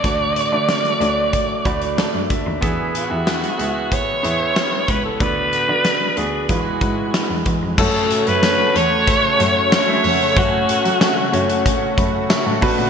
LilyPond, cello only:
\new Staff \with { instrumentName = "Cello" } { \clef bass \time 4/4 \key fis \minor \tempo 4 = 93 d,8 r16 d16 r8 d,8 r8 d,8 r16 fis,16 d,16 dis,16 | e,8 r16 e,16 r8 cis,8. r16 e,8 r8 cis,8 | d,8 r16 d16 r8 d,8 e,8 gis,8 r16 e,16 e,16 eis,16 | fis,8 r16 fis,16 r8 e,8. r16 fis,8 r8 eis,8 |
fis,8 r16 fis16 r8 fis,8 r8 fis,8 r16 a,16 b,16 ais,16 | }